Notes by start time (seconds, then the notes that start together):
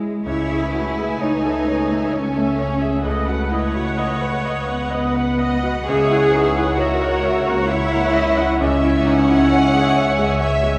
Already playing: C#2 G#3 E4 C#5
0.26 C#2 A3 E4 C#5 G#5
0.50 G#4 E5
0.73 F#4 B4 C#5
0.98 G#4 E5
1.21 D#4 C#5
1.45 A4 E5
1.67 C#5
1.90 A3 E5
2.12 C#4 A4 C#5
2.36 A3 E5
2.58 G#4 C#5
2.81 G#4 E5
3.04 C#2 A3 A4 B4 D#5 F#5
3.28 F#4 F#5
3.51 E4 C#5 D#5
3.74 F#4 F#5
3.98 D#5
4.21 B4 F#5
4.45 D#5
4.68 B3 F#5
4.90 B3 B4 D#5
5.14 B3 F#5
5.38 D#5
5.63 F#4 F#5
5.88 C#2 G#4 C#5 E5
6.11 E4 F#5
6.33 D#4 B4 E5
6.57 E4 F#5
6.79 F#4 A#4 C#5 E5
7.01 A#4 F#5
7.24 C#5 E5
7.47 A#3 F#5
7.68 E4 C#5 E5
7.92 A#3 F#5
8.13 C#5 D#5 E5
8.38 E4 F#5
8.59 C#2 C#4 C#5 E5 G#5
8.82 E4 E5
9.06 D#4 E5 F#5
9.28 E4 E5
9.52 C#5 E5
9.73 G#4 E5
9.95 C#5 E5
10.17 G#3 E5
10.40 C#5 E5
10.61 G#3 E5